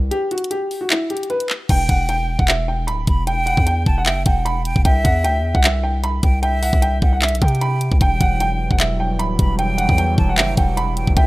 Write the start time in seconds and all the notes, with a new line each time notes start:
Already playing: C2
0.11 G4, closed hi-hat
0.31 F#4, closed hi-hat
0.38 closed hi-hat
0.44 closed hi-hat
0.51 G4, closed hi-hat
0.71 open hi-hat
0.81 F#4
0.90 E4, clap, closed hi-hat
1.10 G4, closed hi-hat
1.17 closed hi-hat
1.23 closed hi-hat
1.30 B4, closed hi-hat
1.40 closed hi-hat
1.50 clap
1.69 E1 G5, kick, closed hi-hat, crash
1.89 E1 F#5, kick, closed hi-hat
2.09 G5, closed hi-hat
2.39 E1 F#5, kick
2.48 E5, clap, closed hi-hat
2.68 G5
2.87 D1 B5, closed hi-hat
3.07 E1 B5, kick, closed hi-hat
3.27 G5, closed hi-hat
3.46 F#5, closed hi-hat
3.57 E2, kick
3.67 G5, closed hi-hat
3.86 E1 A5, kick
3.98 F#5
4.06 F#1 E5 G5, clap, closed hi-hat
4.26 E1 F#5 G5, kick, closed hi-hat
4.45 B5, closed hi-hat
4.65 G5, closed hi-hat
4.76 E1, kick
4.85 C2 E5 G5, kick, closed hi-hat
5.04 E2 F#5, kick, closed hi-hat
5.24 D2 G5, closed hi-hat
5.40 E2
5.55 C2 F#5, kick
5.64 E5, clap, closed hi-hat
5.83 G5
6.04 B5, closed hi-hat
6.23 C2 G5, kick, closed hi-hat
6.43 E5 G5, closed hi-hat
6.62 F#5, open hi-hat
6.73 C2, kick
6.82 G5, closed hi-hat
7.02 C2 F#5, kick
7.12 F#5
7.22 E5, clap, closed hi-hat
7.28 B1, closed hi-hat
7.35 closed hi-hat
7.42 C3 G5, kick, closed hi-hat
7.48 closed hi-hat
7.55 closed hi-hat
7.61 B5, closed hi-hat
7.81 closed hi-hat
7.92 C2, kick
8.01 E1 E3 F#3 G3 G5, kick, closed hi-hat
8.21 E1 F#5, kick, closed hi-hat
8.40 G5, closed hi-hat
8.71 E1 F#5, kick
8.80 E5, clap, closed hi-hat
9.00 G5
9.19 D1 B5, closed hi-hat
9.39 E1 B5, kick, closed hi-hat
9.59 G5, closed hi-hat
9.78 F#5, closed hi-hat
9.89 E2, kick
9.98 G5, closed hi-hat
10.18 E1 A5, kick
10.29 F#5
10.38 F#1 E5 G5, clap, closed hi-hat
10.57 E1 F#5 G5, kick, closed hi-hat
10.77 B5, closed hi-hat
10.97 G5, closed hi-hat
11.07 E1, kick
11.17 C2 D3 C4 E4 E5 G5, kick, closed hi-hat